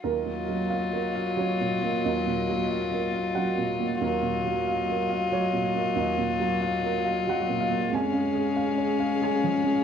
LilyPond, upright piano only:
<<
  \new Staff \with { instrumentName = "Upright piano" } { \time 3/4 \key ees \minor \tempo 4 = 92 bes'2 des''4 | ees''2 ges''4 | bes'2 des''4 | ees''2 ges''8 f''8 |
aes''2 aes''4 | }
  \new Staff \with { instrumentName = "Upright piano" } { \time 3/4 \key ees \minor \tuplet 3/2 { ees,8 bes8 ges8 f''8 bes'8 f''8 ges8 bes,8 bes8 } | \tuplet 3/2 { ees,8 bes,8 ges8 f''8 bes'8 f''8 ges8 bes,8 bes8 } | \tuplet 3/2 { ees,8 bes,8 ges8 f''8 bes'8 f''8 ges8 bes,8 bes8 } | \tuplet 3/2 { ees,8 bes,8 ges8 f''8 bes'8 f''8 ges8 bes,8 bes8 } |
\tuplet 3/2 { f,8 des'8 aes'8 f''8 des''8 f''8 aes'8 f8 des'8 } | }
>>